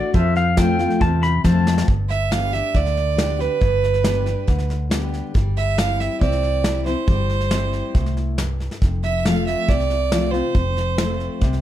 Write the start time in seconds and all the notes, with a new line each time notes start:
Already playing: A2 D4 F#4 D5
0.14 F2 F4 A4 C5 E5, kick, snare
0.36 F5, snare
0.57 F3 A3 C4 F4 A4 C5 G5, kick, snare, hi-hat pedal
0.79 C4 F4, snare
0.90 snare
1.00 E2 C3 F4 A4 C5 A5, kick, snare
1.23 B5, snare
1.44 F2 F3 A3 C4 F4 A4 C5 A5, kick, snare, hi-hat pedal
1.67 snare
1.78 snare
1.88 G1 G2, kick, snare
2.09 E5, snare
2.31 G3 B3 D4 G4 F5, snare, hi-hat pedal
2.53 D4 G4 E5, snare
2.74 D2 D3 D5, kick, snare
2.86 snare
2.97 snare
3.17 G3 B3 D4 G4, snare, hi-hat pedal
3.39 D4 G4 B4, snare
3.61 G1 G2, kick, snare
3.84 snare
3.94 snare
4.04 G3 B3 D4 G4, snare, hi-hat pedal
4.26 D4 G4, snare
4.47 D2 D3, kick, snare
4.58 snare
4.70 snare
4.90 G3 B3 D4 G4, snare, hi-hat pedal
5.14 snare
5.34 G1 G3, kick, snare
5.57 E5, snare
5.77 G3 C4 E4 F5, snare, hi-hat pedal
6.00 E5, snare
6.20 C2 C4 D5, kick, snare
6.32 snare
6.43 snare
6.64 G3 C4 E4, snare, hi-hat pedal
6.86 C4 E4 C5, snare
7.08 G1 G3, kick, snare
7.30 snare
7.40 snare
7.51 G3 C4 E4, snare, hi-hat pedal
7.73 snare
7.95 C2 A2, kick, snare
8.06 snare
8.17 snare
8.38 G2, snare, hi-hat pedal
8.60 snare
8.71 snare
8.82 F1 F2, kick, snare
9.03 E5, snare
9.25 F3 A3 C4 F4 F5, snare, hi-hat pedal
9.47 E5, snare
9.68 C2 C3 D5, kick, snare
9.80 snare
9.90 snare
10.12 F3 A3 C4 F4, snare, hi-hat pedal
10.31 C4 F4 C5, snare
10.55 F1 F2, kick, snare
10.77 snare
10.98 F3 A3 C4 F4, snare, hi-hat pedal
11.20 snare
11.41 C2 C3, kick, snare
11.53 snare